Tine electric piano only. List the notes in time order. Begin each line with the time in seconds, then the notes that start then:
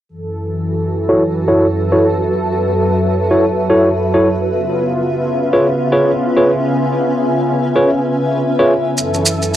1.09 E4 F#4 A4 C#5
1.48 E4 F#4 A4 C#5
1.92 E4 F#4 A4 C#5
3.31 E4 F#4 A4 C#5
3.70 E4 F#4 A4 C#5
4.14 E4 F#4 A4 C#5
5.53 F4 G#4 B4 C#5
5.92 F4 G#4 B4 C#5
6.37 F4 G#4 B4 C#5
7.76 F4 G#4 B4 C#5
8.59 F4 G#4 B4 C#5